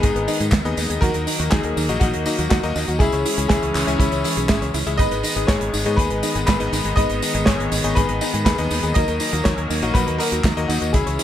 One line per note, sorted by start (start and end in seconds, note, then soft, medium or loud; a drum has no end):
0.00 0.13 G#1 loud
0.00 2.97 D#3 medium
0.00 0.98 G#3 medium
0.00 0.15 G#3 medium
0.00 0.25 B3 loud
0.00 0.98 B3 medium
0.00 0.25 D#4 medium
0.00 0.74 D#4 medium
0.00 0.25 G#4 loud
0.00 0.73 G#4 medium
0.00 0.25 D#5 loud
0.00 kick loud
0.00 closed hi-hat loud
0.00 tambourine soft
0.16 0.26 G#1 medium
0.16 0.20 B4 medium
0.16 closed hi-hat medium
0.28 0.44 B3 medium
0.28 0.44 D#4 medium
0.28 0.33 D#4 medium
0.28 0.44 G#4 medium
0.28 0.43 D#5 medium
0.28 open hi-hat loud
0.28 tambourine medium
0.40 0.50 G#2 medium
0.40 0.45 G#4 medium
0.40 closed hi-hat medium
0.40 tambourine soft
0.52 0.62 D#2 loud
0.52 0.65 G#3 medium
0.52 kick loud
0.52 snare loud
0.52 clap medium
0.52 closed hi-hat loud
0.52 tambourine soft
0.65 0.75 D#2 medium
0.65 0.99 B3 loud
0.65 0.99 D#4 medium
0.65 0.99 G#4 medium
0.65 0.70 B4 medium
0.65 0.99 D#5 loud
0.65 closed hi-hat medium
0.65 tambourine soft
0.77 0.88 D#2 loud
0.77 0.82 D#4 medium
0.77 open hi-hat loud
0.77 tambourine medium
0.90 1.00 D#2 medium
0.90 0.95 G#4 medium
0.90 closed hi-hat medium
0.90 tambourine soft
1.01 1.12 D#2 loud
1.01 1.14 F#3 medium
1.01 2.99 F#3 medium
1.01 2.99 A#3 medium
1.01 1.37 A#3 medium
1.01 1.37 D#4 medium
1.01 1.37 F#4 medium
1.01 1.49 F#4 medium
1.01 1.53 A#4 loud
1.01 1.37 D#5 medium
1.01 kick loud
1.01 closed hi-hat loud
1.01 tambourine soft
1.14 1.25 D#2 medium
1.14 1.19 A#4 medium
1.14 closed hi-hat medium
1.14 tambourine soft
1.27 1.32 D#4 medium
1.27 open hi-hat loud
1.27 tambourine medium
1.39 1.50 D#2 medium
1.39 1.86 A#3 medium
1.39 1.86 D#4 medium
1.39 1.44 F#4 medium
1.39 1.86 F#4 medium
1.39 1.86 D#5 medium
1.39 closed hi-hat medium
1.39 tambourine soft
1.50 1.62 D#2 loud
1.50 1.64 F#3 medium
1.50 1.98 D#4 medium
1.50 2.02 G#4 loud
1.50 kick loud
1.50 snare loud
1.50 clap medium
1.50 closed hi-hat loud
1.50 tambourine soft
1.63 1.74 D#2 medium
1.63 1.69 A#4 medium
1.63 closed hi-hat medium
1.77 1.87 D#2 medium
1.77 1.81 D#4 medium
1.77 open hi-hat medium
1.77 tambourine medium
1.89 1.99 A#1 medium
1.89 2.23 A#3 loud
1.89 2.23 D#4 medium
1.89 2.23 F#4 medium
1.89 1.94 F#4 medium
1.89 2.23 D#5 loud
1.89 closed hi-hat medium
1.89 tambourine soft
2.00 2.11 A#1 loud
2.00 2.13 F#3 medium
2.00 2.48 D#4 medium
2.00 2.47 F#4 loud
2.00 kick loud
2.00 closed hi-hat loud
2.00 tambourine soft
2.14 2.24 D#2 medium
2.14 2.19 A#4 medium
2.14 closed hi-hat medium
2.26 2.42 A#3 medium
2.26 2.31 D#4 medium
2.26 2.42 D#4 medium
2.26 2.42 F#4 medium
2.26 2.42 D#5 loud
2.26 open hi-hat loud
2.26 tambourine medium
2.39 2.49 D#2 medium
2.39 2.43 F#4 medium
2.39 closed hi-hat medium
2.39 tambourine soft
2.49 2.61 D#2 loud
2.49 2.63 F#3 medium
2.49 2.98 D#4 medium
2.49 3.01 F#4 loud
2.49 kick loud
2.49 snare loud
2.49 clap medium
2.49 closed hi-hat medium
2.49 tambourine soft
2.63 2.74 D#2 medium
2.63 2.98 A#3 loud
2.63 2.98 D#4 medium
2.63 2.98 F#4 medium
2.63 2.68 A#4 medium
2.63 2.98 D#5 loud
2.63 closed hi-hat medium
2.63 tambourine soft
2.76 2.86 D#2 loud
2.76 2.81 D#4 medium
2.76 open hi-hat medium
2.76 tambourine medium
2.88 2.98 D#2 medium
2.88 2.93 F#4 medium
2.88 closed hi-hat medium
2.88 tambourine soft
2.99 3.10 C#2 loud
2.99 4.97 E3 medium
2.99 3.12 G#3 medium
2.99 8.92 G#3 medium
2.99 3.35 C#4 medium
2.99 4.97 C#4 medium
2.99 3.35 E4 medium
2.99 3.47 E4 medium
2.99 3.47 G#4 loud
2.99 3.35 G#4 medium
2.99 3.35 E5 medium
2.99 kick loud
2.99 closed hi-hat medium
2.99 tambourine soft
3.12 3.23 C#2 medium
3.12 3.18 C#5 medium
3.12 closed hi-hat medium
3.12 tambourine soft
3.25 3.30 E4 medium
3.25 open hi-hat loud
3.25 tambourine medium
3.38 3.48 C#2 medium
3.38 3.84 C#4 medium
3.38 3.84 E4 medium
3.38 3.84 G#4 medium
3.38 3.43 G#4 medium
3.38 3.85 E5 medium
3.38 closed hi-hat medium
3.38 tambourine soft
3.48 3.60 C#2 loud
3.48 3.62 G#3 medium
3.48 3.97 E4 medium
3.48 4.00 G#4 medium
3.48 kick loud
3.48 snare loud
3.48 clap medium
3.48 closed hi-hat loud
3.48 tambourine soft
3.63 3.73 C#2 medium
3.63 3.67 C#5 medium
3.63 closed hi-hat medium
3.75 3.85 C#2 medium
3.75 3.80 E4 medium
3.75 clap medium
3.75 open hi-hat medium
3.75 tambourine medium
3.87 3.98 C#2 medium
3.87 4.22 C#4 loud
3.87 4.22 E4 medium
3.87 4.22 G#4 medium
3.87 3.92 G#4 medium
3.87 4.22 E5 loud
3.87 closed hi-hat soft
3.87 tambourine soft
3.98 4.10 C#2 loud
3.98 4.12 G#3 medium
3.98 4.71 C#4 medium
3.98 4.69 E4 medium
3.98 kick loud
3.98 closed hi-hat loud
3.98 tambourine soft
4.12 4.22 C#2 medium
4.12 4.17 C#5 medium
4.12 closed hi-hat medium
4.12 tambourine soft
4.24 4.46 C#4 medium
4.24 4.46 E4 medium
4.24 4.29 E4 medium
4.24 4.46 G#4 medium
4.24 4.46 E5 medium
4.24 open hi-hat loud
4.24 tambourine medium
4.37 4.47 B1 medium
4.37 4.42 G#4 medium
4.37 closed hi-hat medium
4.37 tambourine soft
4.49 4.61 G#3 medium
4.49 4.65 C#4 medium
4.49 4.65 E4 medium
4.49 4.65 G#4 medium
4.49 4.65 E5 loud
4.49 kick loud
4.49 snare loud
4.49 clap medium
4.49 closed hi-hat loud
4.49 tambourine soft
4.62 4.72 C#2 medium
4.62 4.67 C#5 medium
4.62 closed hi-hat soft
4.62 tambourine soft
4.74 4.84 C#2 medium
4.74 4.79 E4 medium
4.74 open hi-hat medium
4.74 tambourine medium
4.87 4.97 C#2 medium
4.87 4.96 C#4 medium
4.87 4.96 E4 medium
4.87 4.96 G#4 medium
4.87 4.91 G#4 medium
4.87 4.96 E5 loud
4.87 closed hi-hat medium
4.87 tambourine soft
4.98 5.09 G#1 loud
4.98 10.90 D#3 medium
4.98 5.11 G#3 medium
4.98 5.33 B3 medium
4.98 8.92 B3 medium
4.98 5.33 D#4 medium
4.98 5.33 G#4 medium
4.98 5.46 B4 medium
4.98 5.44 D#5 loud
4.98 5.33 D#5 medium
4.98 kick loud
4.98 closed hi-hat loud
4.98 tambourine soft
5.11 5.21 G#1 medium
5.11 5.16 B4 medium
5.11 closed hi-hat medium
5.11 tambourine soft
5.23 5.29 D#4 medium
5.23 open hi-hat loud
5.23 tambourine medium
5.36 5.46 G#1 medium
5.36 5.83 B3 medium
5.36 5.83 D#4 medium
5.36 5.83 G#4 medium
5.36 5.41 G#4 medium
5.36 5.83 D#5 medium
5.36 closed hi-hat medium
5.36 tambourine soft
5.47 5.59 G#1 loud
5.47 5.60 G#3 medium
5.47 5.95 G#4 medium
5.47 5.99 C#5 loud
5.47 kick loud
5.47 snare loud
5.47 clap medium
5.47 closed hi-hat medium
5.47 tambourine soft
5.61 5.71 G#1 medium
5.61 5.66 B4 medium
5.61 closed hi-hat medium
5.73 5.83 G#1 medium
5.73 5.78 D#4 medium
5.73 open hi-hat medium
5.73 tambourine medium
5.85 5.96 G#2 medium
5.85 6.20 B3 loud
5.85 6.20 D#4 medium
5.85 6.20 G#4 medium
5.85 5.91 G#4 medium
5.85 6.20 D#5 loud
5.85 closed hi-hat medium
5.85 tambourine soft
5.96 6.08 D#2 loud
5.96 6.10 G#3 medium
5.96 6.45 G#4 medium
5.96 6.45 B4 loud
5.96 kick loud
5.96 closed hi-hat medium
5.96 tambourine soft
6.10 6.21 G#1 medium
6.10 6.15 B4 medium
6.10 closed hi-hat medium
6.23 6.39 B3 medium
6.23 6.39 D#4 medium
6.23 6.28 D#4 medium
6.23 6.39 G#4 medium
6.23 6.39 D#5 loud
6.23 open hi-hat loud
6.23 tambourine medium
6.35 6.45 G#1 medium
6.35 6.40 G#4 medium
6.35 closed hi-hat medium
6.35 tambourine soft
6.46 6.58 G#1 loud
6.46 6.60 G#3 medium
6.46 6.94 G#4 medium
6.46 6.93 B4 loud
6.46 kick loud
6.46 snare loud
6.46 clap medium
6.46 closed hi-hat loud
6.46 tambourine soft
6.60 6.70 G#1 medium
6.60 6.94 B3 loud
6.60 6.94 D#4 medium
6.60 6.94 G#4 medium
6.60 6.65 B4 medium
6.60 6.94 D#5 loud
6.60 closed hi-hat medium
6.60 tambourine soft
6.73 6.83 G#1 loud
6.73 6.77 D#4 medium
6.73 open hi-hat loud
6.73 tambourine medium
6.84 6.95 G#1 medium
6.84 6.90 G#4 medium
6.84 closed hi-hat medium
6.84 tambourine soft
6.96 7.07 G#1 loud
6.96 7.09 G#3 medium
6.96 7.32 B3 medium
6.96 7.32 D#4 medium
6.96 7.32 G#4 medium
6.96 7.44 B4 medium
6.96 7.48 D#5 loud
6.96 7.32 D#5 medium
6.96 kick loud
6.96 closed hi-hat loud
6.96 tambourine soft
7.09 7.20 G#1 medium
7.09 7.15 B4 medium
7.09 closed hi-hat medium
7.09 tambourine soft
7.22 7.27 D#4 medium
7.22 open hi-hat loud
7.22 tambourine medium
7.34 7.45 G#1 medium
7.34 7.81 B3 medium
7.34 7.81 D#4 medium
7.34 7.81 G#4 medium
7.34 7.39 G#4 medium
7.34 7.81 D#5 medium
7.34 closed hi-hat medium
7.34 tambourine soft
7.45 7.57 G#1 loud
7.45 7.59 G#3 medium
7.45 7.94 G#4 medium
7.45 7.97 C#5 loud
7.45 kick loud
7.45 snare loud
7.45 clap medium
7.45 closed hi-hat loud
7.45 tambourine soft
7.59 7.69 G#1 medium
7.59 7.64 B4 medium
7.59 closed hi-hat medium
7.72 7.82 G#1 medium
7.72 7.77 D#4 medium
7.72 open hi-hat loud
7.72 tambourine medium
7.84 7.94 G#1 medium
7.84 8.18 B3 loud
7.84 8.18 D#4 loud
7.84 8.18 G#4 medium
7.84 7.89 G#4 medium
7.84 8.18 D#5 loud
7.84 closed hi-hat medium
7.84 tambourine soft
7.95 8.07 G#1 loud
7.95 8.08 G#3 medium
7.95 8.43 G#4 medium
7.95 8.42 B4 loud
7.95 kick loud
7.95 closed hi-hat medium
7.95 tambourine soft
8.09 8.19 G#1 medium
8.09 8.14 B4 medium
8.09 closed hi-hat medium
8.21 8.37 B3 medium
8.21 8.37 D#4 medium
8.21 8.26 D#4 medium
8.21 8.37 G#4 medium
8.21 8.37 D#5 loud
8.21 open hi-hat loud
8.21 tambourine medium
8.34 8.44 G#2 medium
8.34 8.39 G#4 medium
8.34 closed hi-hat medium
8.34 tambourine soft
8.45 8.56 D#2 loud
8.45 8.58 G#3 medium
8.45 8.93 G#4 medium
8.45 8.97 B4 loud
8.45 kick loud
8.45 snare loud
8.45 clap medium
8.45 closed hi-hat loud
8.45 tambourine soft
8.58 8.69 D#2 medium
8.58 8.93 B3 loud
8.58 8.93 D#4 medium
8.58 8.93 G#4 medium
8.58 8.63 B4 medium
8.58 8.93 D#5 loud
8.58 closed hi-hat medium
8.58 tambourine soft
8.71 8.81 D#2 loud
8.71 8.76 D#4 medium
8.71 open hi-hat loud
8.71 tambourine medium
8.83 8.93 D#2 medium
8.83 8.88 G#4 medium
8.83 closed hi-hat medium
8.83 tambourine soft
8.94 9.06 D#2 loud
8.94 10.92 F#3 medium
8.94 9.08 F#3 medium
8.94 9.30 A#3 medium
8.94 10.92 A#3 medium
8.94 9.30 D#4 medium
8.94 9.30 F#4 medium
8.94 9.42 A#4 medium
8.94 9.46 D#5 loud
8.94 9.30 D#5 loud
8.94 kick loud
8.94 closed hi-hat loud
8.94 tambourine soft
9.08 9.18 D#2 medium
9.08 9.13 A#4 medium
9.08 closed hi-hat medium
9.08 tambourine soft
9.20 9.25 D#4 medium
9.20 open hi-hat loud
9.20 tambourine medium
9.33 9.43 D#2 medium
9.33 9.80 A#3 medium
9.33 9.80 D#4 medium
9.33 9.80 F#4 medium
9.33 9.38 F#4 medium
9.33 9.80 D#5 medium
9.33 closed hi-hat medium
9.33 tambourine soft
9.44 9.56 D#2 loud
9.44 9.57 F#3 medium
9.44 9.92 A#4 medium
9.44 9.96 C#5 loud
9.44 kick loud
9.44 snare loud
9.44 clap medium
9.44 closed hi-hat loud
9.44 tambourine soft
9.58 9.68 D#2 medium
9.58 9.62 A#4 medium
9.58 closed hi-hat medium
9.70 9.80 D#2 medium
9.70 9.75 D#4 medium
9.70 open hi-hat loud
9.70 tambourine medium
9.82 9.93 A#1 medium
9.82 10.17 A#3 loud
9.82 10.17 D#4 medium
9.82 10.17 F#4 medium
9.82 9.87 F#4 medium
9.82 10.17 D#5 loud
9.82 closed hi-hat medium
9.82 tambourine soft
9.94 10.05 A#1 loud
9.94 10.07 F#3 medium
9.94 10.18 F#4 medium
9.94 10.20 B4 loud
9.94 kick loud
9.94 closed hi-hat loud
9.94 tambourine soft
10.07 10.17 D#2 medium
10.07 10.12 A#4 medium
10.07 closed hi-hat medium
10.18 10.35 A#3 medium
10.18 10.35 D#4 medium
10.18 10.24 D#4 medium
10.18 10.35 F#4 medium
10.18 10.66 F#4 medium
10.18 10.70 A#4 loud
10.18 10.35 D#5 loud
10.18 open hi-hat loud
10.18 tambourine medium
10.32 10.42 D#2 medium
10.32 10.37 F#4 medium
10.32 closed hi-hat medium
10.32 tambourine soft
10.44 10.54 D#2 loud
10.44 10.56 F#3 medium
10.44 kick loud
10.44 snare loud
10.44 clap medium
10.44 closed hi-hat loud
10.44 tambourine soft
10.57 10.67 D#2 medium
10.57 10.91 A#3 loud
10.57 10.91 D#4 medium
10.57 10.91 F#4 medium
10.57 10.62 A#4 medium
10.57 10.91 D#5 loud
10.57 closed hi-hat medium
10.57 tambourine soft
10.68 10.79 D#2 medium
10.68 10.74 D#4 medium
10.68 10.93 D#4 medium
10.68 10.92 F#4 medium
10.68 open hi-hat loud
10.68 tambourine medium
10.82 10.92 D#2 medium
10.82 10.86 F#4 medium
10.82 closed hi-hat medium
10.82 tambourine soft
10.93 11.04 C#2 loud
10.93 11.23 E3 medium
10.93 11.06 G#3 medium
10.93 11.23 G#3 medium
10.93 11.23 C#4 medium
10.93 11.23 E4 medium
10.93 11.23 G#4 medium
10.93 11.23 E5 medium
10.93 kick loud
10.93 closed hi-hat loud
10.93 tambourine soft
11.06 11.16 C#2 medium
11.06 11.11 C#5 medium
11.06 closed hi-hat medium
11.06 tambourine soft
11.19 11.23 E4 medium
11.19 open hi-hat loud
11.19 tambourine medium